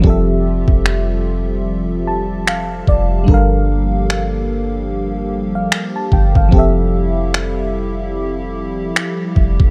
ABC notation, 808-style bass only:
X:1
M:4/4
L:1/16
Q:"Swing 16ths" 1/4=74
K:F
V:1 name="808-style bass" clef=bass
F,,,3 F,,,8- F,,,3 F,,,2 | G,,,12 z2 G,,, G,,, | F,,,12 z2 F,,, F,,, |]